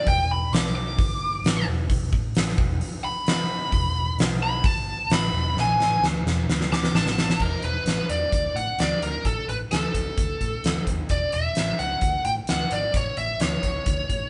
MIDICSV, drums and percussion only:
0, 0, Header, 1, 2, 480
1, 0, Start_track
1, 0, Tempo, 457666
1, 77, Time_signature, 4, 2, 24, 8
1, 7277, Tempo, 461894
1, 14922, End_track
2, 0, Start_track
2, 0, Title_t, "Drums"
2, 70, Note_on_c, 9, 36, 103
2, 70, Note_on_c, 9, 46, 50
2, 175, Note_off_c, 9, 36, 0
2, 175, Note_off_c, 9, 46, 0
2, 555, Note_on_c, 9, 46, 58
2, 571, Note_on_c, 9, 38, 106
2, 660, Note_off_c, 9, 46, 0
2, 676, Note_off_c, 9, 38, 0
2, 694, Note_on_c, 9, 38, 33
2, 799, Note_off_c, 9, 38, 0
2, 1033, Note_on_c, 9, 36, 110
2, 1042, Note_on_c, 9, 46, 59
2, 1138, Note_off_c, 9, 36, 0
2, 1147, Note_off_c, 9, 46, 0
2, 1514, Note_on_c, 9, 46, 57
2, 1531, Note_on_c, 9, 38, 124
2, 1619, Note_off_c, 9, 46, 0
2, 1636, Note_off_c, 9, 38, 0
2, 1989, Note_on_c, 9, 46, 58
2, 1990, Note_on_c, 9, 36, 95
2, 2093, Note_off_c, 9, 46, 0
2, 2095, Note_off_c, 9, 36, 0
2, 2230, Note_on_c, 9, 36, 90
2, 2335, Note_off_c, 9, 36, 0
2, 2465, Note_on_c, 9, 46, 60
2, 2481, Note_on_c, 9, 38, 107
2, 2570, Note_off_c, 9, 46, 0
2, 2586, Note_off_c, 9, 38, 0
2, 2609, Note_on_c, 9, 38, 30
2, 2707, Note_on_c, 9, 36, 108
2, 2714, Note_off_c, 9, 38, 0
2, 2812, Note_off_c, 9, 36, 0
2, 2948, Note_on_c, 9, 46, 56
2, 3053, Note_off_c, 9, 46, 0
2, 3423, Note_on_c, 9, 46, 60
2, 3440, Note_on_c, 9, 38, 119
2, 3528, Note_off_c, 9, 46, 0
2, 3545, Note_off_c, 9, 38, 0
2, 3905, Note_on_c, 9, 36, 91
2, 3906, Note_on_c, 9, 46, 50
2, 4010, Note_off_c, 9, 36, 0
2, 4011, Note_off_c, 9, 46, 0
2, 4390, Note_on_c, 9, 46, 52
2, 4407, Note_on_c, 9, 38, 112
2, 4495, Note_off_c, 9, 46, 0
2, 4512, Note_off_c, 9, 38, 0
2, 4867, Note_on_c, 9, 36, 114
2, 4867, Note_on_c, 9, 46, 57
2, 4972, Note_off_c, 9, 36, 0
2, 4972, Note_off_c, 9, 46, 0
2, 5348, Note_on_c, 9, 46, 59
2, 5365, Note_on_c, 9, 38, 117
2, 5453, Note_off_c, 9, 46, 0
2, 5470, Note_off_c, 9, 38, 0
2, 5841, Note_on_c, 9, 38, 56
2, 5946, Note_off_c, 9, 38, 0
2, 6088, Note_on_c, 9, 38, 66
2, 6193, Note_off_c, 9, 38, 0
2, 6331, Note_on_c, 9, 38, 80
2, 6435, Note_off_c, 9, 38, 0
2, 6577, Note_on_c, 9, 38, 85
2, 6682, Note_off_c, 9, 38, 0
2, 6812, Note_on_c, 9, 38, 92
2, 6917, Note_off_c, 9, 38, 0
2, 6933, Note_on_c, 9, 38, 68
2, 7038, Note_off_c, 9, 38, 0
2, 7053, Note_on_c, 9, 38, 77
2, 7158, Note_off_c, 9, 38, 0
2, 7171, Note_on_c, 9, 38, 73
2, 7276, Note_off_c, 9, 38, 0
2, 7290, Note_on_c, 9, 38, 98
2, 7394, Note_off_c, 9, 38, 0
2, 7410, Note_on_c, 9, 38, 81
2, 7514, Note_off_c, 9, 38, 0
2, 7532, Note_on_c, 9, 38, 107
2, 7636, Note_off_c, 9, 38, 0
2, 7650, Note_on_c, 9, 38, 85
2, 7754, Note_off_c, 9, 38, 0
2, 7756, Note_on_c, 9, 36, 81
2, 7758, Note_on_c, 9, 49, 72
2, 7860, Note_off_c, 9, 36, 0
2, 7862, Note_off_c, 9, 49, 0
2, 7989, Note_on_c, 9, 42, 43
2, 8093, Note_off_c, 9, 42, 0
2, 8234, Note_on_c, 9, 42, 71
2, 8251, Note_on_c, 9, 38, 94
2, 8338, Note_off_c, 9, 42, 0
2, 8355, Note_off_c, 9, 38, 0
2, 8479, Note_on_c, 9, 42, 49
2, 8583, Note_off_c, 9, 42, 0
2, 8718, Note_on_c, 9, 36, 97
2, 8722, Note_on_c, 9, 42, 69
2, 8821, Note_off_c, 9, 36, 0
2, 8826, Note_off_c, 9, 42, 0
2, 8967, Note_on_c, 9, 42, 48
2, 9071, Note_off_c, 9, 42, 0
2, 9198, Note_on_c, 9, 42, 72
2, 9214, Note_on_c, 9, 38, 92
2, 9302, Note_off_c, 9, 42, 0
2, 9318, Note_off_c, 9, 38, 0
2, 9444, Note_on_c, 9, 42, 55
2, 9548, Note_off_c, 9, 42, 0
2, 9679, Note_on_c, 9, 36, 87
2, 9679, Note_on_c, 9, 42, 64
2, 9783, Note_off_c, 9, 36, 0
2, 9783, Note_off_c, 9, 42, 0
2, 9929, Note_on_c, 9, 42, 49
2, 10033, Note_off_c, 9, 42, 0
2, 10159, Note_on_c, 9, 42, 72
2, 10176, Note_on_c, 9, 38, 85
2, 10263, Note_off_c, 9, 42, 0
2, 10280, Note_off_c, 9, 38, 0
2, 10400, Note_on_c, 9, 36, 63
2, 10403, Note_on_c, 9, 42, 55
2, 10504, Note_off_c, 9, 36, 0
2, 10507, Note_off_c, 9, 42, 0
2, 10641, Note_on_c, 9, 36, 99
2, 10641, Note_on_c, 9, 42, 74
2, 10745, Note_off_c, 9, 36, 0
2, 10745, Note_off_c, 9, 42, 0
2, 10882, Note_on_c, 9, 36, 64
2, 10885, Note_on_c, 9, 42, 53
2, 10986, Note_off_c, 9, 36, 0
2, 10989, Note_off_c, 9, 42, 0
2, 11125, Note_on_c, 9, 42, 76
2, 11141, Note_on_c, 9, 38, 105
2, 11229, Note_off_c, 9, 42, 0
2, 11245, Note_off_c, 9, 38, 0
2, 11361, Note_on_c, 9, 36, 70
2, 11364, Note_on_c, 9, 42, 60
2, 11465, Note_off_c, 9, 36, 0
2, 11468, Note_off_c, 9, 42, 0
2, 11592, Note_on_c, 9, 42, 64
2, 11599, Note_on_c, 9, 36, 86
2, 11696, Note_off_c, 9, 42, 0
2, 11703, Note_off_c, 9, 36, 0
2, 11834, Note_on_c, 9, 42, 47
2, 11938, Note_off_c, 9, 42, 0
2, 12071, Note_on_c, 9, 42, 68
2, 12088, Note_on_c, 9, 38, 86
2, 12175, Note_off_c, 9, 42, 0
2, 12192, Note_off_c, 9, 38, 0
2, 12320, Note_on_c, 9, 42, 48
2, 12424, Note_off_c, 9, 42, 0
2, 12550, Note_on_c, 9, 42, 65
2, 12556, Note_on_c, 9, 36, 93
2, 12653, Note_off_c, 9, 42, 0
2, 12660, Note_off_c, 9, 36, 0
2, 12794, Note_on_c, 9, 42, 49
2, 12898, Note_off_c, 9, 42, 0
2, 13028, Note_on_c, 9, 42, 71
2, 13045, Note_on_c, 9, 38, 90
2, 13132, Note_off_c, 9, 42, 0
2, 13149, Note_off_c, 9, 38, 0
2, 13272, Note_on_c, 9, 42, 59
2, 13376, Note_off_c, 9, 42, 0
2, 13512, Note_on_c, 9, 42, 67
2, 13514, Note_on_c, 9, 36, 89
2, 13616, Note_off_c, 9, 42, 0
2, 13618, Note_off_c, 9, 36, 0
2, 13752, Note_on_c, 9, 42, 49
2, 13856, Note_off_c, 9, 42, 0
2, 13990, Note_on_c, 9, 42, 72
2, 14006, Note_on_c, 9, 38, 101
2, 14094, Note_off_c, 9, 42, 0
2, 14110, Note_off_c, 9, 38, 0
2, 14231, Note_on_c, 9, 42, 57
2, 14233, Note_on_c, 9, 36, 68
2, 14335, Note_off_c, 9, 42, 0
2, 14337, Note_off_c, 9, 36, 0
2, 14470, Note_on_c, 9, 42, 77
2, 14474, Note_on_c, 9, 36, 93
2, 14574, Note_off_c, 9, 42, 0
2, 14578, Note_off_c, 9, 36, 0
2, 14714, Note_on_c, 9, 36, 60
2, 14716, Note_on_c, 9, 42, 53
2, 14818, Note_off_c, 9, 36, 0
2, 14820, Note_off_c, 9, 42, 0
2, 14922, End_track
0, 0, End_of_file